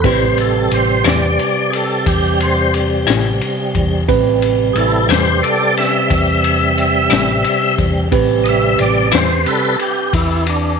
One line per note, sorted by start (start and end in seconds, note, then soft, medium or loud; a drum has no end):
0.02 0.68 A1 medium
0.02 0.24 A2 medium
0.02 4.04 C3 soft
0.02 4.04 G3 soft
0.02 0.25 G3 medium
0.02 4.04 C4 soft
0.02 0.25 C4 medium
0.02 4.04 G4 soft
0.02 0.05 B4 medium
0.02 4.05 B4 medium
0.02 kick loud
0.02 ride medium
0.06 0.25 E4 medium
0.06 0.38 C5 medium
0.38 0.72 A4 medium
0.38 ride soft
0.71 1.03 A1 medium
0.71 1.06 C5 medium
0.71 ride medium
1.04 1.36 E2 medium
1.04 1.26 A2 medium
1.04 1.26 G3 medium
1.04 1.26 C4 medium
1.04 1.25 E4 medium
1.04 1.08 C#5 medium
1.04 snare loud
1.04 ride medium
1.08 1.72 D5 medium
1.39 ride medium
1.70 1.74 G#4 medium
1.70 ride medium
1.75 2.07 A4 medium
2.06 3.04 E2 medium
2.06 2.40 G4 medium
2.06 kick medium
2.06 ride medium
2.40 2.74 C5 medium
2.40 ride medium
2.74 ride medium
3.07 3.39 A1 medium
3.07 3.29 A2 medium
3.07 3.28 G3 medium
3.07 3.28 C4 medium
3.07 3.27 E4 medium
3.07 snare loud
3.07 ride medium
3.41 ride medium
3.75 4.06 E2 medium
3.75 kick medium
3.75 ride medium
4.08 4.72 A1 medium
4.08 8.08 C3 soft
4.08 8.08 G3 soft
4.08 8.08 C4 medium
4.08 8.08 G4 medium
4.08 8.08 B4 medium
4.08 kick loud
4.08 ride medium
4.42 ride soft
4.73 5.06 A1 medium
4.73 5.08 E4 medium
4.73 4.77 G#4 medium
4.73 ride medium
4.78 5.09 A4 medium
5.09 5.40 E2 medium
5.09 5.31 A2 medium
5.09 5.30 G3 medium
5.09 5.30 C4 medium
5.09 5.29 E4 medium
5.09 5.41 G4 medium
5.09 5.43 C5 medium
5.09 snare loud
5.09 ride medium
5.43 5.74 A4 medium
5.43 5.76 D5 medium
5.43 ride medium
5.77 7.75 E5 medium
5.77 snare soft
5.77 ride medium
6.10 7.07 E2 medium
6.10 kick medium
6.10 ride medium
6.44 ride medium
6.78 ride soft
7.10 7.42 A1 medium
7.10 7.32 A2 medium
7.10 7.32 G3 medium
7.10 7.31 C4 medium
7.10 7.31 E4 medium
7.10 snare loud
7.10 ride medium
7.44 ride medium
7.78 8.09 E2 medium
7.78 kick medium
7.78 ride medium
8.11 8.75 A1 medium
8.11 9.08 C3 medium
8.11 9.09 G3 soft
8.11 10.80 C4 medium
8.11 10.80 G4 medium
8.11 10.80 B4 medium
8.11 kick loud
8.11 ride medium
8.44 8.47 D#5 medium
8.44 ride soft
8.49 8.80 E5 loud
8.79 9.11 A1 medium
8.79 9.13 D5 medium
8.79 ride medium
9.12 9.44 E2 medium
9.12 9.34 A2 medium
9.12 9.33 G3 medium
9.12 9.33 C4 medium
9.12 9.32 E4 medium
9.12 9.46 C5 medium
9.12 snare loud
9.12 ride medium
9.46 9.76 C3 medium
9.46 9.77 G3 soft
9.46 9.80 A4 medium
9.46 9.77 B4 soft
9.46 ride medium
9.79 10.13 G4 medium
9.79 ride medium
10.13 10.80 E2 medium
10.13 10.47 E4 medium
10.13 kick medium
10.13 ride medium
10.47 10.80 D4 medium
10.47 ride medium